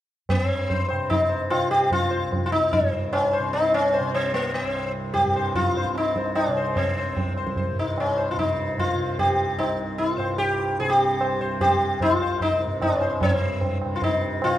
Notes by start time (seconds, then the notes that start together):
0.29 G2 C4, tabla tin, tabla ge
0.70 C5, tabla tin, tabla ge
0.88 C3 C5, tabla na
1.10 D#4, tabla tin, tabla ge
1.29 C5
1.50 C3 F4, tabla na
1.71 G4
1.91 F4, tabla tin, tabla ge
2.11 C5
2.16 C2
2.32 tabla tin, tabla ge
2.46 F4
2.52 D#4
2.73 C4, tabla tin, tabla ge
2.78 G2
3.13 C#4, tabla na
3.33 C5
3.39 C3
3.53 D#4, tabla tin
3.74 C#4
3.94 C5, tabla tin
4.00 C3
4.14 C4, tabla na
4.34 A#3, tabla tin
4.54 C4
4.64 C2
4.75 tabla na
5.14 G4, tabla tin, tabla ge
5.24 G2
5.36 C5
5.55 F4, tabla tin, tabla ge
5.77 C5
5.84 C3, tabla ke
5.95 D#4, tabla te
6.06 tabla te
6.16 C5, tabla ke
6.26 tabla te
6.35 C#4, tabla na
6.48 C3
6.57 C5
6.76 C4, tabla tin, tabla ge
6.97 C5
7.10 C2
7.17 tabla tin, tabla ge
7.37 C5, tabla na
7.47 tabla ke
7.56 C5, tabla tin, tabla ge
7.72 G2
7.79 D#4
7.98 C#4, tabla na
8.17 C5
8.31 C3 F4
8.38 D#4, tabla tin, tabla ge
8.78 F4, tabla tin, tabla ge
8.96 C3
9.19 G4, tabla tin, tabla ge
9.56 C2 D#4, tabla na
9.98 E4, tabla tin
10.14 G2 F4 C5
10.20 tabla na
10.38 G4, tabla tin
10.60 tabla na
10.80 C3 G#4, tabla tin
10.89 G4
11.21 C5, tabla na
11.41 C3 C5
11.61 G4 C5, tabla tin, tabla ge
12.00 C2 F4 C5, tabla tin, tabla ge
12.20 C5, tabla na
12.40 D#4 C5, tabla tin, tabla ge
12.66 G2
12.81 C#4, tabla na, tabla ge
13.01 C5, tabla te
13.21 G2 C#4, tabla tin, tabla ge
13.34 C4
13.61 tabla tin, tabla ge
13.82 C3, tabla na
13.96 F4
14.02 D#4, tabla tin, tabla ge
14.22 tabla na
14.42 C3 F4, tabla na